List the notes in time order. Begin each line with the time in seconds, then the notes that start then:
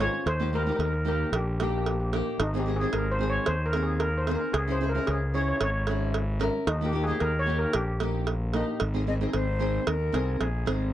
0.00 C#4 F4 G#4 C#5, cowbell
0.26 D#2 C5, cowbell
0.40 A#3 D#4 G4
0.53 A#3 D#4 G4 A#4
0.63 A#3 D#4 G4 A#4
0.71 A#4
0.77 D#2 A#4, cowbell
0.85 A#4
0.93 A#4
1.05 A#3 D#4 G4 A#4
1.32 A#1 G4, cowbell
1.60 A#3 D#4 G4, cowbell
1.70 G4
1.78 G4
1.84 G4, cowbell
1.91 G4
2.00 G4
2.13 A#3 D#4 G4, cowbell
2.40 G#1 D#4, cowbell
2.54 C4 D#4 G#4
2.59 G4
2.66 C4 D#4 G#4
2.76 C4 G#4
2.81 D#4 G#4
2.93 G#1 A#4, cowbell
3.12 C5
3.19 C4 D#4 G#4
3.30 C#5
3.46 D#2 C5, cowbell
3.66 A#4
3.73 C4 D#4 G#4, cowbell
3.83 G#4
4.00 A#4, cowbell
4.18 C5
4.27 C4 D#4 G#4, cowbell
4.35 A#4
4.53 C#2 G#4, cowbell
4.68 C#4 E4 G#4
4.72 C5
4.80 C#4 E4 G#4
4.89 A#4
4.95 C#4 E4 G#4
5.07 C#2 G#4, cowbell
5.34 C#4 E4 G#4 C#5
5.42 C#5
5.48 C#5
5.56 C#5
5.61 G#1 C#5, cowbell
5.70 C#5
5.87 C#4 E4 G#4, cowbell
6.14 cowbell
6.39 C#4 E4 A#4, cowbell
6.67 D#2 D#4, cowbell
6.81 A#3 D#4 G4
6.86 G4
6.92 A#3 D#4 G4
7.04 A#3 D#4 G#4
7.08 G4
7.20 D#2 A#4, cowbell
7.39 C#5
7.46 A#3 D#4 G4
7.59 A#4
7.73 A#1 G4, cowbell
8.00 A#3 D#4 G4, cowbell
8.27 cowbell
8.53 A#3 D#4 G4, cowbell
8.80 G#1, cowbell
8.94 C4 D#4 G#4
9.07 C4 D#4 G#4 D#5
9.21 C4 D#4 G#4
9.33 G#1 C5, cowbell
9.59 C4 D#4 G#4
9.87 D#2 A#4, cowbell
10.12 C2 C4 D#4 G#4, cowbell
10.40 A#1 G#4, cowbell
10.66 G#1 C4 D#4 G#4, cowbell